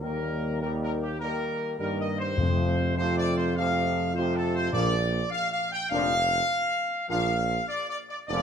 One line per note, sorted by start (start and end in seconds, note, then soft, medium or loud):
0.01 1.52 D#2 medium
0.01 0.57 D#3 medium
0.01 0.60 G3 medium
0.01 0.58 A#3 medium
0.01 0.58 A#4 medium
0.61 1.03 D#3 medium
0.61 1.03 G3 medium
0.61 1.17 A#3 medium
0.61 0.70 A#4 medium
0.61 1.17 A#4 medium
0.82 0.91 A#4 medium
1.02 1.20 G4 medium
1.19 1.75 D#3 medium
1.19 1.75 G3 medium
1.19 1.76 A#3 medium
1.19 1.75 A#4 medium
1.19 1.76 A#4 medium
1.78 2.40 G2 medium
1.78 2.34 D#3 medium
1.78 2.34 G3 medium
1.78 2.23 A#3 medium
1.78 1.98 A#4 medium
1.78 2.23 A#4 medium
2.01 2.18 D#5 medium
2.19 2.93 C5 medium
2.37 3.22 F2 medium
2.37 4.73 F2 medium
2.37 2.95 C3 medium
2.37 2.95 F3 medium
2.37 2.94 A3 medium
2.37 2.97 F4 medium
2.96 3.51 C3 medium
2.96 3.51 F3 medium
2.96 3.52 A3 medium
2.96 3.52 F4 medium
2.96 3.15 C5 medium
3.17 3.35 D5 loud
3.37 3.55 C5 medium
3.56 4.11 C3 medium
3.56 4.11 F3 medium
3.56 4.11 A3 medium
3.56 4.11 F4 medium
3.56 4.11 F5 loud
4.14 4.70 C3 medium
4.14 4.69 F3 medium
4.14 4.69 A3 medium
4.14 4.69 F4 medium
4.14 4.34 C5 medium
4.36 4.54 A4 medium
4.55 4.72 C5 loud
4.72 5.22 A#1 medium
4.72 5.57 A#2 medium
4.72 4.94 A#2 medium
4.72 4.93 F3 medium
4.72 4.93 A#3 medium
4.72 4.93 D4 medium
4.72 5.27 D5 loud
5.31 5.49 F5 loud
5.51 5.70 F5 loud
5.72 5.90 G5 loud
5.90 6.40 F1 medium
5.90 6.12 A#2 medium
5.90 6.12 F3 medium
5.90 6.11 A#3 medium
5.90 6.11 D4 medium
5.90 7.05 F5 loud
7.08 7.59 A#1 medium
7.08 7.29 A#2 medium
7.08 7.29 F3 medium
7.08 7.30 A#3 medium
7.08 7.30 D4 medium
7.08 7.65 F5 loud
7.68 7.87 D5 loud
7.89 7.98 D5 loud
8.09 8.18 D5 medium
8.27 8.42 F1 medium
8.27 8.42 A#2 medium
8.27 8.42 F3 medium
8.27 8.42 A#3 medium
8.27 8.42 D4 medium
8.27 8.42 D5 loud